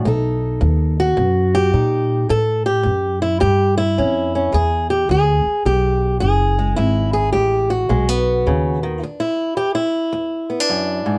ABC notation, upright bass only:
X:1
M:4/4
L:1/8
Q:"Swing" 1/4=107
K:Bdor
V:1 name="Upright bass" clef=bass
B,,,2 ^D,,2 F,,2 ^A,,2 | A,,2 F,,2 =G,,2 =F,,2 | E,,2 D,, z B,,,2 F,,,2 | G,,,2 A,,,2 B,,,2 ^D,,2 |
z8 |]